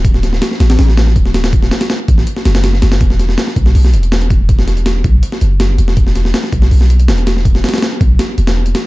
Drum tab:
HH |x---x---x---x-x-x---x---x---x-x-|x---x-x-x---x---x---x-x-x---x-x-|x---x---x---x---o---x-x-x-x-x---|x---x-x-x---x---x---x---x---x---|
SD |--o-o-o-o-o-o-o-o-o-o-o---o-o-o-|--o-o-o-o-----o---o-o-o-o-o-o-o-|--o-o-o-o-o---o---o-----o-------|--o-o---o---------o-----o-----o-|
BD |o-----------------------o-------|o-----------o-------------------|o-----------o---------------o---|o-----------o-------------------|

HH |x---x---x---x---o---x-x-x-x-x---|x---xxxxx---x---x---x-x---x-x---|
SD |--o-o-o-o-o---o---o-----o---o-o-|--o-ooooo-------o-----o-----o---|
BD |o-----------o-------------------|o-----------o-------------------|